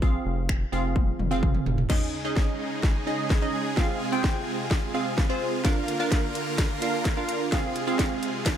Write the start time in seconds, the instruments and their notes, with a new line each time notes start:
Already playing: analog synth bass A#1
0.02 synth pluck C4 F4 G#4 F5, kick
0.26 analog synth bass F1
0.49 finger snap, kick
0.72 analog synth bass F1, synth pluck C4 F4 G#4 F5
0.96 kick, high tom
1.19 analog synth bass F1, mid tom
1.31 synth pluck C4 F4 G#4 F5
1.43 kick, mid tom
1.55 mid tom
1.66 analog synth bass F1, floor tom
1.78 floor tom
1.89 supersaw synth C#3 G#3 D#4 G#4, synth pluck C#4 D#4 G#4 D#5, kick, snare, crash
2.25 synth pluck C#4 D#4 G#4 D#5
2.37 kick, snare
2.83 kick, snare
3.07 synth pluck C#4 D#4 G#4 D#5
3.30 kick, snare
3.42 synth pluck C#4 D#4 G#4 D#5
3.77 supersaw synth C3 F4, synth pluck C4 F4 G#4 F5, kick, snare
4.12 synth pluck C4 F4 G#4 G5
4.24 kick, snare
4.71 kick, snare
4.94 synth pluck C4 F4 G#4 F5
5.18 kick, snare
5.29 synth pluck C4 F4 G#4 C5
5.64 supersaw synth D3 A#3 A#4, synth pluck D4 F4 A#4 F5, kick, snare, closed hi-hat
5.88 closed hi-hat
6.00 synth pluck D4 F4 A#4 F5
6.12 kick, snare, closed hi-hat
6.35 closed hi-hat
6.58 kick, snare, closed hi-hat
6.82 synth pluck D4 F4 A#4 F5, closed hi-hat
7.05 kick, snare, closed hi-hat
7.17 synth pluck D4 F4 A#4 F5
7.29 closed hi-hat
7.52 supersaw synth C3 G#3 G#4, synth pluck C4 F4 G#4 F5, kick, snare, closed hi-hat
7.76 closed hi-hat
7.87 synth pluck C4 F4 G#4 F5
7.99 kick, snare, closed hi-hat
8.23 closed hi-hat
8.46 kick, snare, closed hi-hat